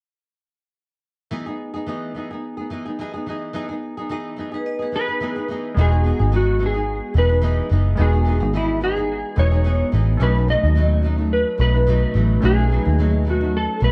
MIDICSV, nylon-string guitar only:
0, 0, Header, 1, 2, 480
1, 0, Start_track
1, 0, Key_signature, 4, "major"
1, 0, Tempo, 555556
1, 1141, Time_signature, 4, 2, 24, 8
1, 12026, End_track
2, 0, Start_track
2, 0, Title_t, "Nylon-string guitar"
2, 0, Program_c, 0, 24
2, 1130, Note_on_c, 0, 52, 79
2, 1138, Note_on_c, 0, 59, 74
2, 1146, Note_on_c, 0, 63, 81
2, 1152, Note_on_c, 0, 68, 79
2, 1251, Note_off_c, 0, 68, 0
2, 1261, Note_on_c, 0, 68, 53
2, 1267, Note_off_c, 0, 63, 0
2, 1268, Note_off_c, 0, 52, 0
2, 1272, Note_off_c, 0, 59, 0
2, 1278, Note_on_c, 0, 63, 51
2, 1293, Note_on_c, 0, 59, 44
2, 1490, Note_off_c, 0, 68, 0
2, 1500, Note_on_c, 0, 68, 56
2, 1509, Note_off_c, 0, 63, 0
2, 1519, Note_on_c, 0, 63, 51
2, 1521, Note_off_c, 0, 59, 0
2, 1531, Note_on_c, 0, 59, 46
2, 1612, Note_off_c, 0, 59, 0
2, 1612, Note_on_c, 0, 52, 73
2, 1615, Note_off_c, 0, 68, 0
2, 1619, Note_off_c, 0, 63, 0
2, 1622, Note_on_c, 0, 59, 72
2, 1630, Note_on_c, 0, 63, 74
2, 1634, Note_on_c, 0, 68, 77
2, 1843, Note_off_c, 0, 52, 0
2, 1853, Note_on_c, 0, 52, 47
2, 1856, Note_off_c, 0, 59, 0
2, 1866, Note_off_c, 0, 63, 0
2, 1866, Note_on_c, 0, 59, 53
2, 1868, Note_off_c, 0, 68, 0
2, 1876, Note_on_c, 0, 63, 54
2, 1888, Note_on_c, 0, 68, 54
2, 1982, Note_off_c, 0, 68, 0
2, 1990, Note_off_c, 0, 52, 0
2, 1992, Note_on_c, 0, 68, 48
2, 1996, Note_off_c, 0, 59, 0
2, 1999, Note_off_c, 0, 63, 0
2, 2010, Note_on_c, 0, 63, 44
2, 2023, Note_on_c, 0, 59, 42
2, 2210, Note_off_c, 0, 68, 0
2, 2220, Note_on_c, 0, 68, 49
2, 2229, Note_off_c, 0, 63, 0
2, 2240, Note_on_c, 0, 63, 43
2, 2241, Note_off_c, 0, 59, 0
2, 2252, Note_on_c, 0, 59, 36
2, 2333, Note_off_c, 0, 59, 0
2, 2335, Note_on_c, 0, 52, 57
2, 2336, Note_off_c, 0, 68, 0
2, 2342, Note_off_c, 0, 63, 0
2, 2343, Note_on_c, 0, 59, 66
2, 2352, Note_on_c, 0, 63, 65
2, 2364, Note_on_c, 0, 68, 66
2, 2456, Note_off_c, 0, 68, 0
2, 2467, Note_on_c, 0, 68, 58
2, 2471, Note_off_c, 0, 52, 0
2, 2473, Note_off_c, 0, 63, 0
2, 2475, Note_off_c, 0, 59, 0
2, 2484, Note_on_c, 0, 63, 40
2, 2499, Note_on_c, 0, 59, 39
2, 2577, Note_off_c, 0, 59, 0
2, 2579, Note_off_c, 0, 68, 0
2, 2582, Note_on_c, 0, 52, 74
2, 2587, Note_off_c, 0, 63, 0
2, 2587, Note_on_c, 0, 59, 67
2, 2596, Note_on_c, 0, 63, 77
2, 2602, Note_on_c, 0, 68, 83
2, 2699, Note_off_c, 0, 68, 0
2, 2709, Note_on_c, 0, 68, 52
2, 2714, Note_off_c, 0, 52, 0
2, 2717, Note_off_c, 0, 59, 0
2, 2718, Note_off_c, 0, 63, 0
2, 2728, Note_on_c, 0, 63, 45
2, 2741, Note_on_c, 0, 59, 41
2, 2819, Note_on_c, 0, 52, 55
2, 2820, Note_off_c, 0, 68, 0
2, 2823, Note_off_c, 0, 59, 0
2, 2830, Note_off_c, 0, 63, 0
2, 2833, Note_on_c, 0, 59, 62
2, 2842, Note_on_c, 0, 63, 69
2, 2850, Note_on_c, 0, 68, 67
2, 3042, Note_off_c, 0, 52, 0
2, 3049, Note_off_c, 0, 59, 0
2, 3052, Note_on_c, 0, 52, 75
2, 3055, Note_off_c, 0, 63, 0
2, 3059, Note_on_c, 0, 59, 76
2, 3064, Note_off_c, 0, 68, 0
2, 3065, Note_on_c, 0, 63, 80
2, 3074, Note_on_c, 0, 68, 82
2, 3174, Note_off_c, 0, 68, 0
2, 3184, Note_on_c, 0, 68, 53
2, 3190, Note_off_c, 0, 52, 0
2, 3193, Note_off_c, 0, 59, 0
2, 3193, Note_off_c, 0, 63, 0
2, 3203, Note_on_c, 0, 63, 51
2, 3217, Note_on_c, 0, 59, 52
2, 3421, Note_off_c, 0, 68, 0
2, 3431, Note_on_c, 0, 68, 58
2, 3436, Note_off_c, 0, 63, 0
2, 3446, Note_off_c, 0, 59, 0
2, 3446, Note_on_c, 0, 63, 51
2, 3464, Note_on_c, 0, 59, 45
2, 3533, Note_off_c, 0, 59, 0
2, 3537, Note_on_c, 0, 52, 73
2, 3540, Note_off_c, 0, 63, 0
2, 3541, Note_off_c, 0, 68, 0
2, 3544, Note_on_c, 0, 59, 71
2, 3551, Note_on_c, 0, 63, 82
2, 3557, Note_on_c, 0, 68, 86
2, 3759, Note_off_c, 0, 52, 0
2, 3770, Note_on_c, 0, 52, 55
2, 3773, Note_off_c, 0, 59, 0
2, 3782, Note_off_c, 0, 63, 0
2, 3783, Note_on_c, 0, 59, 56
2, 3790, Note_off_c, 0, 68, 0
2, 3792, Note_on_c, 0, 63, 60
2, 3803, Note_on_c, 0, 68, 61
2, 3891, Note_off_c, 0, 68, 0
2, 3901, Note_on_c, 0, 68, 55
2, 3908, Note_off_c, 0, 63, 0
2, 3909, Note_off_c, 0, 52, 0
2, 3916, Note_off_c, 0, 59, 0
2, 3918, Note_on_c, 0, 63, 50
2, 3932, Note_on_c, 0, 59, 43
2, 4126, Note_off_c, 0, 68, 0
2, 4137, Note_on_c, 0, 68, 44
2, 4148, Note_off_c, 0, 63, 0
2, 4159, Note_on_c, 0, 63, 47
2, 4160, Note_off_c, 0, 59, 0
2, 4171, Note_on_c, 0, 59, 41
2, 4249, Note_off_c, 0, 59, 0
2, 4249, Note_on_c, 0, 52, 58
2, 4254, Note_off_c, 0, 68, 0
2, 4260, Note_off_c, 0, 63, 0
2, 4260, Note_on_c, 0, 59, 64
2, 4271, Note_on_c, 0, 63, 64
2, 4282, Note_on_c, 0, 68, 68
2, 4376, Note_off_c, 0, 68, 0
2, 4387, Note_on_c, 0, 68, 60
2, 4389, Note_off_c, 0, 52, 0
2, 4394, Note_off_c, 0, 59, 0
2, 4394, Note_off_c, 0, 63, 0
2, 4404, Note_on_c, 0, 63, 47
2, 4420, Note_on_c, 0, 59, 39
2, 4496, Note_on_c, 0, 52, 72
2, 4498, Note_off_c, 0, 59, 0
2, 4499, Note_off_c, 0, 68, 0
2, 4500, Note_off_c, 0, 63, 0
2, 4508, Note_on_c, 0, 59, 78
2, 4510, Note_on_c, 0, 63, 75
2, 4519, Note_on_c, 0, 68, 81
2, 4619, Note_off_c, 0, 68, 0
2, 4629, Note_on_c, 0, 68, 50
2, 4632, Note_off_c, 0, 52, 0
2, 4637, Note_off_c, 0, 63, 0
2, 4638, Note_off_c, 0, 59, 0
2, 4648, Note_on_c, 0, 63, 51
2, 4663, Note_on_c, 0, 59, 40
2, 4737, Note_on_c, 0, 52, 65
2, 4740, Note_off_c, 0, 59, 0
2, 4740, Note_off_c, 0, 68, 0
2, 4750, Note_off_c, 0, 63, 0
2, 4751, Note_on_c, 0, 59, 65
2, 4759, Note_on_c, 0, 63, 71
2, 4767, Note_on_c, 0, 68, 71
2, 4974, Note_off_c, 0, 52, 0
2, 4984, Note_off_c, 0, 59, 0
2, 4984, Note_on_c, 0, 52, 69
2, 4987, Note_off_c, 0, 63, 0
2, 4994, Note_on_c, 0, 59, 77
2, 4995, Note_off_c, 0, 68, 0
2, 4997, Note_on_c, 0, 63, 86
2, 5006, Note_on_c, 0, 68, 85
2, 5102, Note_off_c, 0, 68, 0
2, 5113, Note_on_c, 0, 68, 50
2, 5116, Note_off_c, 0, 52, 0
2, 5118, Note_off_c, 0, 63, 0
2, 5121, Note_off_c, 0, 59, 0
2, 5129, Note_on_c, 0, 63, 50
2, 5143, Note_on_c, 0, 59, 42
2, 5216, Note_on_c, 0, 52, 57
2, 5219, Note_off_c, 0, 59, 0
2, 5222, Note_off_c, 0, 68, 0
2, 5226, Note_off_c, 0, 63, 0
2, 5229, Note_on_c, 0, 59, 59
2, 5236, Note_on_c, 0, 63, 61
2, 5245, Note_on_c, 0, 68, 57
2, 5339, Note_off_c, 0, 68, 0
2, 5349, Note_on_c, 0, 68, 52
2, 5352, Note_off_c, 0, 52, 0
2, 5356, Note_off_c, 0, 63, 0
2, 5359, Note_off_c, 0, 59, 0
2, 5366, Note_on_c, 0, 63, 50
2, 5381, Note_on_c, 0, 59, 45
2, 5455, Note_off_c, 0, 59, 0
2, 5459, Note_on_c, 0, 52, 65
2, 5461, Note_off_c, 0, 68, 0
2, 5463, Note_off_c, 0, 63, 0
2, 5466, Note_on_c, 0, 59, 81
2, 5474, Note_on_c, 0, 63, 77
2, 5482, Note_on_c, 0, 68, 80
2, 5683, Note_off_c, 0, 52, 0
2, 5694, Note_off_c, 0, 59, 0
2, 5694, Note_on_c, 0, 52, 57
2, 5704, Note_off_c, 0, 63, 0
2, 5704, Note_on_c, 0, 59, 58
2, 5713, Note_off_c, 0, 68, 0
2, 5714, Note_on_c, 0, 63, 54
2, 5726, Note_on_c, 0, 68, 59
2, 5812, Note_off_c, 0, 68, 0
2, 5822, Note_on_c, 0, 68, 48
2, 5827, Note_off_c, 0, 63, 0
2, 5831, Note_off_c, 0, 52, 0
2, 5836, Note_off_c, 0, 59, 0
2, 5838, Note_on_c, 0, 63, 48
2, 5856, Note_on_c, 0, 59, 44
2, 6169, Note_on_c, 0, 52, 59
2, 6173, Note_off_c, 0, 59, 0
2, 6177, Note_off_c, 0, 68, 0
2, 6182, Note_off_c, 0, 63, 0
2, 6183, Note_on_c, 0, 59, 62
2, 6192, Note_on_c, 0, 63, 70
2, 6200, Note_on_c, 0, 68, 72
2, 6291, Note_off_c, 0, 68, 0
2, 6301, Note_on_c, 0, 68, 56
2, 6308, Note_off_c, 0, 52, 0
2, 6309, Note_off_c, 0, 63, 0
2, 6315, Note_off_c, 0, 59, 0
2, 6319, Note_on_c, 0, 63, 47
2, 6335, Note_on_c, 0, 59, 46
2, 6407, Note_on_c, 0, 52, 81
2, 6409, Note_off_c, 0, 59, 0
2, 6413, Note_off_c, 0, 63, 0
2, 6416, Note_off_c, 0, 68, 0
2, 6419, Note_on_c, 0, 59, 73
2, 6423, Note_on_c, 0, 63, 88
2, 6430, Note_on_c, 0, 68, 74
2, 6637, Note_off_c, 0, 52, 0
2, 6648, Note_on_c, 0, 52, 58
2, 6652, Note_off_c, 0, 59, 0
2, 6662, Note_on_c, 0, 59, 59
2, 6663, Note_off_c, 0, 63, 0
2, 6667, Note_off_c, 0, 68, 0
2, 6672, Note_on_c, 0, 63, 72
2, 6681, Note_on_c, 0, 68, 64
2, 6877, Note_off_c, 0, 52, 0
2, 6887, Note_on_c, 0, 52, 74
2, 6888, Note_off_c, 0, 59, 0
2, 6896, Note_off_c, 0, 63, 0
2, 6899, Note_on_c, 0, 59, 77
2, 6902, Note_off_c, 0, 68, 0
2, 6907, Note_on_c, 0, 63, 73
2, 6912, Note_on_c, 0, 68, 74
2, 7013, Note_off_c, 0, 68, 0
2, 7023, Note_on_c, 0, 68, 61
2, 7027, Note_off_c, 0, 52, 0
2, 7029, Note_off_c, 0, 63, 0
2, 7033, Note_off_c, 0, 59, 0
2, 7039, Note_on_c, 0, 63, 47
2, 7056, Note_on_c, 0, 59, 51
2, 7125, Note_on_c, 0, 52, 61
2, 7129, Note_off_c, 0, 59, 0
2, 7137, Note_off_c, 0, 63, 0
2, 7137, Note_off_c, 0, 68, 0
2, 7139, Note_on_c, 0, 59, 65
2, 7148, Note_on_c, 0, 63, 57
2, 7159, Note_on_c, 0, 68, 64
2, 7249, Note_off_c, 0, 68, 0
2, 7259, Note_on_c, 0, 68, 57
2, 7266, Note_off_c, 0, 52, 0
2, 7266, Note_off_c, 0, 63, 0
2, 7273, Note_off_c, 0, 59, 0
2, 7277, Note_on_c, 0, 63, 50
2, 7292, Note_on_c, 0, 59, 44
2, 7372, Note_off_c, 0, 59, 0
2, 7373, Note_on_c, 0, 52, 71
2, 7375, Note_off_c, 0, 68, 0
2, 7379, Note_off_c, 0, 63, 0
2, 7383, Note_on_c, 0, 59, 69
2, 7389, Note_on_c, 0, 63, 73
2, 7393, Note_on_c, 0, 68, 78
2, 7601, Note_off_c, 0, 52, 0
2, 7611, Note_off_c, 0, 59, 0
2, 7611, Note_on_c, 0, 52, 52
2, 7622, Note_off_c, 0, 63, 0
2, 7622, Note_on_c, 0, 59, 58
2, 7628, Note_off_c, 0, 68, 0
2, 7633, Note_on_c, 0, 63, 61
2, 7640, Note_on_c, 0, 68, 59
2, 7733, Note_off_c, 0, 68, 0
2, 7744, Note_on_c, 0, 68, 49
2, 7749, Note_off_c, 0, 52, 0
2, 7751, Note_off_c, 0, 63, 0
2, 7754, Note_off_c, 0, 59, 0
2, 7762, Note_on_c, 0, 63, 49
2, 7773, Note_on_c, 0, 59, 45
2, 8086, Note_on_c, 0, 52, 62
2, 8088, Note_off_c, 0, 59, 0
2, 8097, Note_off_c, 0, 63, 0
2, 8097, Note_off_c, 0, 68, 0
2, 8098, Note_on_c, 0, 59, 70
2, 8108, Note_on_c, 0, 63, 72
2, 8117, Note_on_c, 0, 68, 63
2, 8211, Note_off_c, 0, 68, 0
2, 8221, Note_on_c, 0, 68, 56
2, 8227, Note_off_c, 0, 52, 0
2, 8230, Note_off_c, 0, 63, 0
2, 8233, Note_off_c, 0, 59, 0
2, 8240, Note_on_c, 0, 63, 50
2, 8254, Note_on_c, 0, 59, 43
2, 8328, Note_off_c, 0, 59, 0
2, 8330, Note_on_c, 0, 52, 71
2, 8334, Note_off_c, 0, 63, 0
2, 8336, Note_off_c, 0, 68, 0
2, 8339, Note_on_c, 0, 59, 70
2, 8345, Note_on_c, 0, 63, 73
2, 8353, Note_on_c, 0, 68, 74
2, 8560, Note_off_c, 0, 52, 0
2, 8570, Note_on_c, 0, 52, 65
2, 8573, Note_off_c, 0, 59, 0
2, 8581, Note_off_c, 0, 63, 0
2, 8584, Note_on_c, 0, 59, 63
2, 8588, Note_off_c, 0, 68, 0
2, 8591, Note_on_c, 0, 63, 65
2, 8601, Note_on_c, 0, 68, 65
2, 8811, Note_on_c, 0, 47, 76
2, 8815, Note_off_c, 0, 52, 0
2, 8819, Note_on_c, 0, 54, 76
2, 8821, Note_off_c, 0, 59, 0
2, 8821, Note_off_c, 0, 63, 0
2, 8825, Note_on_c, 0, 57, 89
2, 8831, Note_on_c, 0, 63, 84
2, 8832, Note_off_c, 0, 68, 0
2, 8932, Note_off_c, 0, 63, 0
2, 8943, Note_on_c, 0, 63, 59
2, 8949, Note_off_c, 0, 47, 0
2, 8951, Note_off_c, 0, 57, 0
2, 8953, Note_off_c, 0, 54, 0
2, 8962, Note_on_c, 0, 57, 53
2, 8974, Note_on_c, 0, 54, 49
2, 9055, Note_off_c, 0, 54, 0
2, 9057, Note_off_c, 0, 63, 0
2, 9057, Note_on_c, 0, 47, 62
2, 9066, Note_off_c, 0, 57, 0
2, 9066, Note_on_c, 0, 54, 59
2, 9078, Note_on_c, 0, 57, 63
2, 9086, Note_on_c, 0, 63, 70
2, 9180, Note_off_c, 0, 63, 0
2, 9190, Note_on_c, 0, 63, 59
2, 9192, Note_off_c, 0, 47, 0
2, 9196, Note_off_c, 0, 54, 0
2, 9199, Note_off_c, 0, 57, 0
2, 9210, Note_on_c, 0, 57, 51
2, 9222, Note_on_c, 0, 54, 43
2, 9292, Note_off_c, 0, 54, 0
2, 9292, Note_on_c, 0, 47, 68
2, 9300, Note_off_c, 0, 63, 0
2, 9301, Note_off_c, 0, 57, 0
2, 9303, Note_on_c, 0, 54, 80
2, 9311, Note_on_c, 0, 57, 68
2, 9314, Note_on_c, 0, 63, 76
2, 9516, Note_off_c, 0, 47, 0
2, 9526, Note_on_c, 0, 47, 53
2, 9531, Note_off_c, 0, 54, 0
2, 9540, Note_off_c, 0, 57, 0
2, 9542, Note_on_c, 0, 54, 63
2, 9546, Note_off_c, 0, 63, 0
2, 9550, Note_on_c, 0, 57, 62
2, 9557, Note_on_c, 0, 63, 69
2, 9648, Note_off_c, 0, 63, 0
2, 9658, Note_on_c, 0, 63, 59
2, 9666, Note_off_c, 0, 47, 0
2, 9669, Note_off_c, 0, 57, 0
2, 9674, Note_off_c, 0, 54, 0
2, 9679, Note_on_c, 0, 57, 50
2, 9690, Note_on_c, 0, 54, 43
2, 10003, Note_on_c, 0, 47, 65
2, 10006, Note_off_c, 0, 54, 0
2, 10014, Note_off_c, 0, 63, 0
2, 10017, Note_on_c, 0, 54, 65
2, 10019, Note_off_c, 0, 57, 0
2, 10029, Note_on_c, 0, 57, 63
2, 10037, Note_on_c, 0, 63, 73
2, 10128, Note_off_c, 0, 63, 0
2, 10138, Note_on_c, 0, 63, 53
2, 10144, Note_off_c, 0, 47, 0
2, 10145, Note_off_c, 0, 57, 0
2, 10151, Note_off_c, 0, 54, 0
2, 10155, Note_on_c, 0, 57, 51
2, 10169, Note_on_c, 0, 54, 39
2, 10252, Note_off_c, 0, 54, 0
2, 10253, Note_on_c, 0, 47, 78
2, 10254, Note_off_c, 0, 63, 0
2, 10259, Note_off_c, 0, 57, 0
2, 10262, Note_on_c, 0, 54, 79
2, 10270, Note_on_c, 0, 57, 78
2, 10277, Note_on_c, 0, 63, 92
2, 10477, Note_off_c, 0, 47, 0
2, 10487, Note_on_c, 0, 47, 65
2, 10489, Note_off_c, 0, 54, 0
2, 10499, Note_off_c, 0, 57, 0
2, 10499, Note_on_c, 0, 54, 69
2, 10510, Note_off_c, 0, 63, 0
2, 10510, Note_on_c, 0, 57, 69
2, 10521, Note_on_c, 0, 63, 61
2, 10719, Note_off_c, 0, 47, 0
2, 10729, Note_off_c, 0, 54, 0
2, 10729, Note_on_c, 0, 47, 82
2, 10737, Note_off_c, 0, 57, 0
2, 10739, Note_on_c, 0, 54, 73
2, 10743, Note_off_c, 0, 63, 0
2, 10747, Note_on_c, 0, 57, 82
2, 10753, Note_on_c, 0, 63, 98
2, 10851, Note_off_c, 0, 63, 0
2, 10861, Note_on_c, 0, 63, 53
2, 10867, Note_off_c, 0, 57, 0
2, 10868, Note_off_c, 0, 47, 0
2, 10873, Note_off_c, 0, 54, 0
2, 10877, Note_on_c, 0, 57, 55
2, 10893, Note_on_c, 0, 54, 49
2, 10971, Note_on_c, 0, 47, 51
2, 10973, Note_off_c, 0, 54, 0
2, 10975, Note_off_c, 0, 63, 0
2, 10981, Note_off_c, 0, 57, 0
2, 10983, Note_on_c, 0, 54, 56
2, 10991, Note_on_c, 0, 57, 62
2, 11003, Note_on_c, 0, 63, 70
2, 11094, Note_off_c, 0, 63, 0
2, 11104, Note_on_c, 0, 63, 59
2, 11108, Note_off_c, 0, 47, 0
2, 11111, Note_off_c, 0, 57, 0
2, 11115, Note_off_c, 0, 54, 0
2, 11121, Note_on_c, 0, 57, 46
2, 11136, Note_on_c, 0, 54, 45
2, 11217, Note_off_c, 0, 54, 0
2, 11217, Note_off_c, 0, 63, 0
2, 11219, Note_on_c, 0, 47, 62
2, 11226, Note_off_c, 0, 57, 0
2, 11228, Note_on_c, 0, 54, 70
2, 11235, Note_on_c, 0, 57, 69
2, 11240, Note_on_c, 0, 63, 70
2, 11436, Note_off_c, 0, 47, 0
2, 11446, Note_on_c, 0, 47, 56
2, 11451, Note_off_c, 0, 54, 0
2, 11460, Note_off_c, 0, 57, 0
2, 11462, Note_on_c, 0, 54, 61
2, 11470, Note_on_c, 0, 57, 52
2, 11471, Note_off_c, 0, 63, 0
2, 11482, Note_on_c, 0, 63, 62
2, 11572, Note_off_c, 0, 63, 0
2, 11583, Note_on_c, 0, 63, 58
2, 11586, Note_off_c, 0, 47, 0
2, 11592, Note_off_c, 0, 57, 0
2, 11594, Note_off_c, 0, 54, 0
2, 11603, Note_on_c, 0, 57, 45
2, 11617, Note_on_c, 0, 54, 42
2, 11926, Note_on_c, 0, 47, 62
2, 11929, Note_off_c, 0, 54, 0
2, 11936, Note_off_c, 0, 63, 0
2, 11939, Note_on_c, 0, 54, 60
2, 11940, Note_off_c, 0, 57, 0
2, 11951, Note_on_c, 0, 57, 63
2, 11960, Note_on_c, 0, 63, 66
2, 12026, Note_off_c, 0, 47, 0
2, 12026, Note_off_c, 0, 54, 0
2, 12026, Note_off_c, 0, 57, 0
2, 12026, Note_off_c, 0, 63, 0
2, 12026, End_track
0, 0, End_of_file